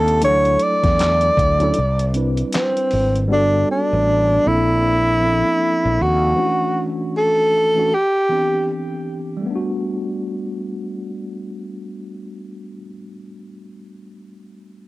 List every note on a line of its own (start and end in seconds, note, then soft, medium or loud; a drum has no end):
0.00 0.24 D#2 loud
0.00 0.20 A#3 medium
0.00 0.24 A#3 medium
0.00 0.24 C4 medium
0.00 0.23 D4 medium
0.00 0.24 F4 medium
0.00 0.24 G4 medium
0.00 0.23 A4 medium
0.00 0.24 A4 medium
0.00 0.20 D5 medium
0.00 0.19 A5 medium
0.00 0.20 C6 medium
0.08 closed hi-hat soft
0.21 0.55 D2 loud
0.21 0.29 E3 medium
0.21 1.35 A3 medium
0.21 1.35 D4 medium
0.21 1.36 E4 medium
0.21 0.65 C#5 loud
0.21 closed hi-hat medium
0.25 1.37 F#3 loud
0.25 1.36 A4 loud
0.45 closed hi-hat soft
0.59 2.16 D5 loud
0.59 closed hi-hat medium
0.83 1.29 E2 medium
0.83 kick medium
0.83 snare soft
0.83 closed hi-hat soft
0.99 snare loud
0.99 clap medium
0.99 closed hi-hat medium
1.21 closed hi-hat medium
1.37 1.70 D2 medium
1.37 kick loud
1.37 closed hi-hat medium
1.59 1.75 F#3 loud
1.59 1.76 C#4 medium
1.59 1.76 D4 medium
1.59 1.77 E4 medium
1.59 closed hi-hat soft
1.64 1.77 A4 loud
1.74 closed hi-hat medium
1.78 2.42 C2 loud
1.99 closed hi-hat medium
2.13 3.14 G3 medium
2.13 3.14 C4 medium
2.13 3.15 D4 medium
2.13 3.15 E4 medium
2.13 closed hi-hat medium
2.17 3.16 B4 medium
2.37 closed hi-hat soft
2.52 3.27 C4 medium
2.52 snare loud
2.52 clap medium
2.52 closed hi-hat loud
2.77 closed hi-hat soft
2.91 3.31 G#1 loud
2.91 open hi-hat soft
3.15 closed hi-hat soft
3.28 3.63 G1 loud
3.28 4.44 G3 loud
3.28 4.45 B3 medium
3.28 4.45 D4 medium
3.28 4.46 F#4 medium
3.33 3.67 D4 loud
3.33 4.47 A4 loud
3.71 4.49 D4 medium
3.93 4.37 A1 medium
4.44 5.42 A#1 loud
4.44 5.08 F3 medium
4.44 5.09 A#3 medium
4.44 5.10 C4 medium
4.44 5.10 D4 medium
4.44 6.04 E4 loud
4.48 5.11 A4 medium
5.20 6.21 F3 medium
5.20 6.22 A#3 medium
5.20 6.22 C4 medium
5.20 5.31 C#4 soft
5.25 6.23 A4 medium
5.30 6.26 D4 medium
5.85 5.97 A#1 loud
6.01 6.32 D#2 loud
6.01 6.91 F#4 medium
6.36 7.49 E3 medium
6.36 7.50 A3 medium
6.36 7.51 C#4 medium
6.36 7.51 D4 medium
6.40 6.47 E4 medium
6.47 7.55 F#4 medium
7.17 7.96 A4 loud
7.75 7.91 E3 medium
7.75 7.91 A3 medium
7.75 7.92 C#4 medium
7.75 7.92 D4 medium
7.79 7.93 F#4 medium
7.95 8.70 G4 medium
8.29 9.29 E3 medium
8.29 9.30 B3 soft
8.29 9.30 C4 medium
8.29 9.31 D4 medium
8.33 9.32 G4 medium
9.37 12.67 G3 medium
9.41 12.71 A3 medium
9.46 12.76 B3 medium
9.51 12.81 D4 medium
9.55 12.85 F#4 medium